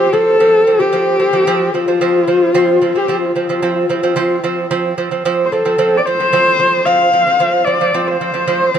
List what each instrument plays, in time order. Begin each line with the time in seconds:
Already playing: horsehead fiddle G4
0.13 lute F3 C4, horsehead fiddle A4
0.40 lute F3 C4
0.67 lute F3 C4
0.79 lute F3 C4, horsehead fiddle G4
0.93 lute F3 C4
1.19 lute F3 C4
1.33 lute F3 C4
1.47 lute F3 C4
1.74 lute F3 C4, horsehead fiddle F4
1.88 lute F3 C4
2.01 lute F3 C4
2.27 lute F3 C4
2.54 lute F3 C4
2.81 lute F3 C4
2.95 lute F3 C4, horsehead fiddle G4
3.08 lute F3 C4
3.25 horsehead fiddle F4
3.36 lute F3 C4
3.49 lute F3 C4
3.62 lute F3 C4
3.89 lute F3 C4
4.03 lute F3 C4
4.16 lute F3 C4
4.44 lute F3 C4
4.71 lute F3 C4
4.98 lute F3 C4
5.11 lute F3 C4
5.25 lute F3 C4
5.46 horsehead fiddle C5
5.52 lute F3 C4, horsehead fiddle A4
5.65 lute F3 C4
5.78 lute F3 C4
5.97 horsehead fiddle D5
6.06 lute F3 C4, horsehead fiddle C5
6.20 lute F3 C4
6.33 lute F3 C4
6.59 lute F3 C4
6.85 lute F3 C4, horsehead fiddle F5
7.13 lute F3 C4
7.27 lute F3 C4
7.40 lute F3 C4
7.65 lute F3 C4, horsehead fiddle D5
7.81 lute F3 C4
7.94 lute F3 C4
8.07 horsehead fiddle C5
8.21 lute F3 C4
8.34 lute F3 C4
8.47 lute F3 C4
8.74 lute F3 C4